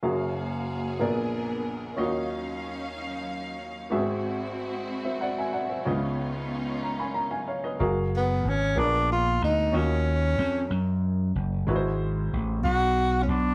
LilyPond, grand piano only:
<<
  \new Staff \with { instrumentName = "Grand piano" } { \time 6/8 \key fis \major \tempo 4. = 62 << { r2. | r2. | r4. r16 <bis' e''>16 <d'' fis''>16 <e'' gis''>16 <d'' fis''>16 <bis' e''>16~ | <bis' e''>16 r4 r16 ais''16 <gis'' b''>16 ais''16 <eis'' gis''>16 <cis'' eis''>16 <b' dis''>16~ |
<b' dis''>16 r2 r8. | r2. | r2. | } \\ { <ais fis' gis' eis''>4. <b gis' ais' d''>4. | <cis' eis' fis' dis''>2. | <b bis fis' gis' e''>2. | <cis' eis' b' dis''>2. |
<fis' gis' ais' eis''>4. <b gis' ais' b' d''>4. | <cis' eis' fis' dis''>2. | <gis e' fis' b' bis'>2. | } >> }
  \new Staff \with { instrumentName = "Grand piano" } { \clef bass \time 6/8 \key fis \major <fis,, fis,>4. <ais,, ais,>4. | <dis, dis>2. | <gis,, gis,>2. | <cis, cis>2. |
r4. ais,4. | dis4. r4. | gis,4. r4. | }
>>